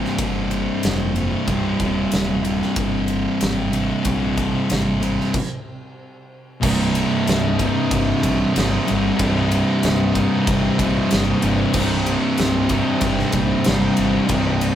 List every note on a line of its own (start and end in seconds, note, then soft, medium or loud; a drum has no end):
0.00 1.17 C2 medium
0.00 1.46 C2 medium
0.00 1.14 G2 medium
0.00 1.47 G2 medium
0.00 1.14 C3 medium
0.00 1.49 C3 medium
0.00 5.33 C3 medium
0.00 5.33 G3 medium
0.00 5.32 C4 medium
0.05 snare soft
0.18 0.67 G1 medium
0.18 kick loud
0.18 ride loud
0.51 ride medium
0.83 1.32 F1 medium
0.83 snare loud
0.83 ride medium
1.15 1.47 C2 medium
1.15 1.46 G2 medium
1.15 1.50 C3 medium
1.15 ride medium
1.46 1.72 C1 medium
1.46 2.46 C2 medium
1.46 2.43 G2 medium
1.46 2.43 C3 loud
1.46 kick loud
1.46 ride medium
1.80 2.04 D#1 medium
1.80 kick medium
1.80 ride medium
2.12 2.61 D#1 medium
2.12 snare loud
2.12 ride medium
2.43 4.02 C2 medium
2.43 4.04 G2 medium
2.43 4.03 C3 medium
2.43 ride medium
2.62 snare soft
2.76 3.25 G1 medium
2.76 kick loud
2.76 ride loud
3.08 ride medium
3.41 3.90 G#1 medium
3.41 snare loud
3.41 ride loud
3.72 4.02 C2 medium
3.72 4.04 G2 medium
3.72 4.03 C3 medium
3.72 ride medium
4.04 4.54 A#1 medium
4.04 5.00 C2 medium
4.04 5.01 G2 medium
4.04 5.00 C3 medium
4.04 kick loud
4.04 ride loud
4.37 kick medium
4.37 ride medium
4.70 5.19 G#1 medium
4.70 snare loud
4.70 ride medium
5.01 5.34 C2 medium
5.01 5.33 G2 medium
5.01 5.32 C3 medium
5.01 ride medium
5.20 snare soft
5.34 kick loud
5.34 crash loud
6.62 7.03 C1 medium
6.62 8.25 C2 medium
6.62 7.62 C2 medium
6.62 7.57 G2 medium
6.62 8.22 G2 medium
6.62 7.60 C3 loud
6.62 14.75 C3 medium
6.62 8.22 C3 loud
6.62 14.75 G3 medium
6.62 7.59 G3 loud
6.62 14.75 C4 medium
6.62 kick loud
6.62 crash loud
6.66 7.59 D#4 loud
6.95 ride medium
7.27 7.68 C1 loud
7.27 snare loud
7.27 ride loud
7.59 8.53 C2 medium
7.59 8.54 G2 medium
7.59 8.55 C3 medium
7.59 8.56 G3 medium
7.59 8.56 D#4 medium
7.59 kick medium
7.59 ride medium
7.91 8.11 G1 medium
7.91 kick loud
7.91 ride loud
8.23 8.44 A#1 medium
8.23 8.53 C2 medium
8.23 8.54 G2 medium
8.23 8.56 C3 medium
8.23 kick medium
8.23 ride medium
8.53 8.76 G1 medium
8.53 9.17 C2 medium
8.53 9.18 C2 medium
8.53 9.17 G2 medium
8.53 9.20 C3 medium
8.53 9.21 C3 medium
8.53 9.21 G3 medium
8.53 9.21 D#4 loud
8.53 ride loud
8.58 snare loud
8.87 9.10 G1 medium
8.87 9.17 C2 medium
8.87 9.18 G2 medium
8.87 9.20 C3 medium
8.87 ride medium
9.17 9.59 C1 loud
9.17 10.82 C2 loud
9.17 10.17 C2 loud
9.17 10.77 G2 loud
9.17 10.13 G2 loud
9.17 10.14 C3 loud
9.17 10.78 C3 loud
9.17 kick loud
9.17 ride loud
9.21 10.14 G3 loud
9.21 10.13 D#4 loud
9.51 ride medium
9.83 10.24 C1 loud
9.83 snare loud
9.83 ride loud
10.13 11.09 C2 medium
10.13 11.09 G2 medium
10.13 11.11 C3 medium
10.13 11.12 G3 medium
10.13 11.12 D#4 medium
10.13 kick medium
10.13 ride medium
10.47 10.68 G1 medium
10.47 kick loud
10.47 ride loud
10.78 10.99 A#1 medium
10.78 11.08 C2 medium
10.78 11.09 G2 medium
10.78 11.12 C3 medium
10.78 kick medium
10.78 ride medium
11.09 11.32 G1 medium
11.09 11.73 C2 medium
11.09 11.75 C2 medium
11.09 11.72 G2 medium
11.09 11.73 G2 medium
11.09 11.77 C3 medium
11.09 11.76 C3 medium
11.09 11.77 G3 medium
11.09 11.78 D#4 loud
11.09 snare loud
11.09 ride loud
11.41 11.63 G1 loud
11.41 11.73 G2 medium
11.41 11.77 C3 medium
11.41 ride medium
11.45 11.72 C2 medium
11.73 12.15 C1 loud
11.73 13.35 C2 loud
11.73 12.73 C2 loud
11.73 13.32 G2 loud
11.73 12.69 G2 loud
11.73 13.32 C3 loud
11.73 kick loud
11.73 crash loud
11.77 12.71 C3 loud
11.77 12.70 G3 loud
11.77 12.69 D#4 loud
12.06 ride medium
12.38 12.79 C1 loud
12.38 snare loud
12.38 ride loud
12.69 13.65 C2 medium
12.69 13.64 G2 medium
12.69 13.66 C3 medium
12.69 13.67 G3 medium
12.69 13.68 D#4 loud
12.69 kick medium
12.69 ride medium
13.01 13.22 G1 medium
13.01 kick loud
13.01 ride loud
13.19 snare soft
13.32 13.54 A#1 medium
13.32 13.64 C2 medium
13.32 13.64 G2 medium
13.32 13.68 C3 medium
13.32 kick medium
13.32 ride medium
13.64 13.87 G1 medium
13.64 14.28 C2 medium
13.64 14.28 G2 medium
13.64 14.31 C3 medium
13.64 14.31 G3 medium
13.64 snare loud
13.64 ride loud
13.69 14.31 C3 medium
13.69 14.32 D#4 loud
13.96 14.18 G1 medium
13.96 14.27 C2 medium
13.96 14.27 G2 medium
13.96 14.30 C3 medium
13.96 ride medium
14.28 14.70 C1 loud
14.28 14.75 C2 medium
14.28 14.75 G2 loud
14.28 14.75 G2 medium
14.28 14.75 C3 loud
14.28 14.75 G3 loud
14.28 14.75 D#4 loud
14.28 kick loud
14.28 ride loud
14.61 ride medium